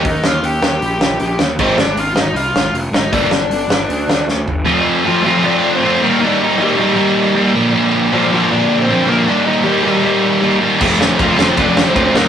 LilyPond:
<<
  \new Staff \with { instrumentName = "Lead electric guitar" } { \time 4/4 \key f \mixolydian \tempo 4 = 156 <ees' ees''>8 <f' f''>8 <g' g''>8 <g' g''>2 r8 | <c' c''>8 <d' d''>8 <f' f''>8 <ees' ees''>8 <f' f''>4 r8 <ees' ees''>8 | <d' d''>2. r4 | r4 <f f'>8 <f f'>8 <d' d''>8. <c' c''>8. <bes bes'>8 |
<d' d''>8 <ees' ees''>8 <g g'>8 <g g'>2 r8 | r4 <f f'>8 <f f'>8 <d' d''>8. <c' c''>8. <bes bes'>8 | <d' d''>8 <ees' ees''>8 <g g'>8 <g g'>2 r8 | r4 <f f'>8 <f f'>8 <d' d''>8. <c' c''>8. <bes bes'>8 | }
  \new Staff \with { instrumentName = "Distorted electric guitar" } { \time 4/4 \key f \mixolydian r1 | <aes, ees aes c' ees'>8 r2. r8 | <g, d g bes d'>8 r2. r8 | <f a c' f'>4 <f a c' f'>8 <f a c' f'>8 <f a c' f'>4 <f a c' f'>8 <ees g bes ees'>8 |
<ees g bes ees'>4 <ees g bes ees'>8 <ees g bes ees'>8 <ees g bes ees'>4 <ees g bes ees'>8 <bes, d f bes d'>8 | <bes, d f bes d'>4 <bes, d f bes d'>8 <bes, d f bes d'>8 <bes, d f bes d'>4 <bes, d f bes d'>8 <bes, d f bes d'>8 | <ees g bes ees'>4 <ees g bes ees'>8 <ees g bes ees'>8 <ees g bes ees'>4 <ees g bes ees'>8 <ees g bes ees'>8 | <f a c' f'>4 <f a c' f'>8 <f a c' f'>8 <f a c' f'>4 <f a c' f'>8 <ees g bes ees'>8 | }
  \new Staff \with { instrumentName = "Distorted electric guitar" } { \clef bass \time 4/4 \key f \mixolydian r1 | r1 | r1 | r1 |
r1 | r1 | r1 | <f, c f>4. <f, c f>4. <f, c f>8 <ees bes ees'>8 | }
  \new Staff \with { instrumentName = "Picked electric bass" } { \clef bass \time 4/4 \key f \mixolydian ees,8 ees,8 ees,8 ees,8 bes,,8 bes,,8 bes,,8 ees,8 | aes,,8 aes,,8 aes,,8 aes,,8 c,8 aes,,8 f,,8 aes,,8 | g,,8 g,,8 g,,8 g,,8 d,8 d,8 d,8 g,,8 | r1 |
r1 | r1 | r1 | f,,8 f,,8 f,,8 f,,8 f,,8 f,,8 d,8 ees,8 | }
  \new DrumStaff \with { instrumentName = "Drums" } \drummode { \time 4/4 <hho bd>8 sn8 hho8 sn8 hho8 sn8 hho8 sn8 | <cymc bd>8 sn8 hho8 sn8 hho8 sn8 hho8 sn8 | <hho bd>8 sn8 hho8 sn8 hho8 sn8 sn8 tomfh8 | r4 r4 r4 r4 |
r4 r4 r4 r4 | r4 r4 r4 r4 | r4 r4 r4 r4 | <cymc bd>8 sn8 <bd cymr>8 sn8 <bd cymr>8 sn8 <bd cymr>8 sn8 | }
>>